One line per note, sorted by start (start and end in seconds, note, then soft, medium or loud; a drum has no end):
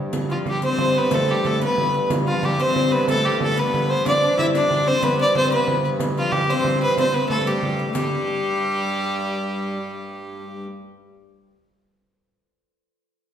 0.00 0.12 G2 medium
0.00 0.45 G4 medium
0.00 0.16 A4 medium
0.00 0.62 C5 medium
0.12 4.07 G2 medium
0.12 riq medium
0.12 frame drum medium
0.29 0.48 F3 medium
0.29 2.26 F4 medium
0.29 0.38 F4 medium
0.29 riq soft
0.46 0.62 G3 medium
0.46 1.27 G4 medium
0.46 0.63 G4 medium
0.46 riq soft
0.46 frame drum medium
0.62 0.98 C4 medium
0.62 0.78 C5 medium
0.62 0.99 C5 medium
0.62 riq medium
0.78 1.66 C5 medium
0.78 frame drum medium
0.95 1.12 B3 medium
0.95 1.16 B4 loud
0.95 riq soft
0.95 frame drum soft
1.11 1.30 A3 medium
1.11 1.43 A4 medium
1.11 1.32 A4 loud
1.11 riq medium
1.11 frame drum loud
1.27 1.47 G3 medium
1.27 3.24 G4 medium
1.27 1.48 G4 medium
1.27 riq soft
1.44 1.64 A3 medium
1.44 3.08 A4 medium
1.44 1.62 A4 medium
1.44 riq soft
1.44 frame drum medium
1.60 2.11 B3 medium
1.60 2.65 B4 medium
1.60 2.08 B4 loud
1.60 riq medium
1.78 frame drum loud
1.94 riq soft
1.94 frame drum soft
2.10 riq medium
2.10 frame drum loud
2.26 2.48 F3 medium
2.26 4.78 F4 medium
2.26 2.47 F4 medium
2.26 riq soft
2.43 2.61 G3 medium
2.43 2.62 G4 loud
2.43 riq soft
2.43 frame drum loud
2.59 2.96 C4 medium
2.59 2.75 C5 medium
2.59 2.93 C5 loud
2.59 riq medium
2.76 2.97 C5 medium
2.76 frame drum loud
2.91 3.09 B3 medium
2.91 3.55 B4 medium
2.91 3.08 B4 loud
2.91 riq soft
2.91 frame drum soft
3.08 3.27 A3 medium
3.08 3.39 A4 medium
3.08 3.27 A4 loud
3.08 riq medium
3.08 frame drum medium
3.24 3.43 G3 medium
3.24 5.59 G4 medium
3.24 3.41 G4 loud
3.24 riq soft
3.39 3.56 A3 medium
3.39 5.59 A4 medium
3.39 frame drum loud
3.44 3.61 A4 loud
3.55 4.06 B3 medium
3.55 3.95 B4 medium
3.55 riq medium
3.60 3.92 B4 loud
3.74 frame drum loud
3.89 4.85 C5 medium
3.89 4.06 C5 loud
3.89 frame drum soft
4.04 7.95 G2 medium
4.04 4.21 D4 medium
4.04 4.20 D5 loud
4.04 4.37 D5 loud
4.04 riq medium
4.04 frame drum loud
4.20 4.37 D4 loud
4.20 4.54 D5 loud
4.20 riq soft
4.37 4.53 E4 medium
4.37 4.46 E5 loud
4.37 riq soft
4.37 frame drum medium
4.54 4.70 D4 medium
4.54 5.18 D5 medium
4.54 4.89 D5 loud
4.54 riq medium
4.71 4.89 D4 medium
4.71 frame drum medium
4.86 5.03 C4 medium
4.86 5.10 C5 loud
4.86 5.04 C5 loud
4.86 riq soft
4.86 frame drum soft
5.03 5.34 B3 medium
5.03 5.19 B4 loud
5.03 5.41 B4 loud
5.03 riq medium
5.03 frame drum medium
5.18 7.03 D5 medium
5.18 5.35 D5 loud
5.18 riq soft
5.35 5.54 C4 medium
5.35 5.58 C5 medium
5.35 5.51 C5 loud
5.35 riq soft
5.35 frame drum medium
5.52 5.89 B3 medium
5.52 5.86 B4 loud
5.52 6.56 B4 medium
5.52 riq medium
5.68 frame drum loud
5.84 riq soft
5.84 frame drum soft
6.00 riq medium
6.00 frame drum loud
6.16 6.34 F3 medium
6.16 8.70 F4 medium
6.16 6.33 F4 medium
6.16 riq soft
6.32 6.49 G3 medium
6.32 6.51 G4 loud
6.32 7.47 G4 medium
6.32 frame drum medium
6.49 6.94 C4 medium
6.49 6.88 C5 medium
6.49 6.82 C5 medium
6.49 riq medium
6.64 frame drum medium
6.81 7.04 B4 medium
6.81 6.97 B4 loud
6.81 riq soft
6.81 frame drum soft
6.98 7.05 C4 medium
6.98 7.11 C5 medium
6.98 7.16 C5 loud
6.98 riq medium
6.98 frame drum medium
7.11 7.20 B3 medium
7.11 7.28 B4 loud
7.11 9.20 B4 medium
7.11 7.21 C5 medium
7.11 riq soft
7.11 frame drum soft
7.28 7.44 A3 medium
7.28 7.49 A4 loud
7.28 9.50 A4 medium
7.28 riq soft
7.28 frame drum medium
7.44 7.85 G3 medium
7.44 7.95 G4 medium
7.44 7.94 G4 medium
7.44 riq medium
7.63 frame drum medium
7.79 riq soft
7.89 7.96 A3 medium
7.95 10.67 G2 medium
7.95 10.68 G3 loud
7.95 10.64 G4 medium
7.95 11.34 G4 medium
7.95 riq medium
7.95 frame drum medium